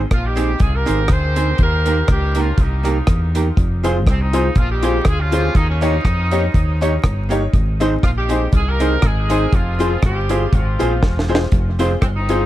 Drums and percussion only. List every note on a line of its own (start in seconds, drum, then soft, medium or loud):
0.11 kick loud
0.11 cross-stick loud
0.11 closed hi-hat medium
0.37 closed hi-hat medium
0.60 kick loud
0.60 closed hi-hat medium
0.87 closed hi-hat medium
1.08 kick loud
1.08 cross-stick loud
1.08 closed hi-hat medium
1.36 closed hi-hat loud
1.58 kick loud
1.58 closed hi-hat medium
1.86 closed hi-hat medium
2.08 kick loud
2.08 cross-stick loud
2.08 closed hi-hat medium
2.35 closed hi-hat medium
2.58 kick loud
2.58 closed hi-hat medium
2.85 closed hi-hat medium
3.07 kick loud
3.07 cross-stick loud
3.07 closed hi-hat medium
3.35 closed hi-hat medium
3.57 kick loud
3.57 closed hi-hat medium
3.84 closed hi-hat medium
4.07 kick loud
4.07 cross-stick loud
4.07 closed hi-hat medium
4.33 closed hi-hat medium
4.56 kick loud
4.56 closed hi-hat medium
4.83 closed hi-hat medium
5.05 kick loud
5.05 cross-stick loud
5.05 closed hi-hat medium
5.32 closed hi-hat loud
5.55 kick loud
5.55 closed hi-hat medium
5.82 closed hi-hat medium
6.05 kick loud
6.05 cross-stick loud
6.05 closed hi-hat medium
6.31 closed hi-hat medium
6.54 kick loud
6.54 closed hi-hat medium
6.82 closed hi-hat medium
7.04 kick loud
7.04 cross-stick loud
7.04 closed hi-hat medium
7.31 closed hi-hat medium
7.54 kick loud
7.54 closed hi-hat medium
7.81 closed hi-hat medium
8.03 kick loud
8.03 cross-stick loud
8.03 closed hi-hat medium
8.30 closed hi-hat medium
8.53 kick loud
8.53 closed hi-hat medium
8.80 closed hi-hat medium
9.02 kick loud
9.02 cross-stick loud
9.02 closed hi-hat medium
9.30 closed hi-hat medium
9.53 kick loud
9.53 closed hi-hat medium
9.80 closed hi-hat medium
10.02 kick loud
10.02 cross-stick loud
10.02 closed hi-hat medium
10.29 closed hi-hat medium
10.53 kick loud
10.53 closed hi-hat medium
10.80 closed hi-hat medium
11.03 kick loud
11.03 snare medium
11.19 snare medium
11.35 snare loud
11.52 kick loud
11.52 closed hi-hat medium
11.79 closed hi-hat medium
12.02 kick loud
12.02 cross-stick loud
12.02 closed hi-hat medium
12.29 closed hi-hat medium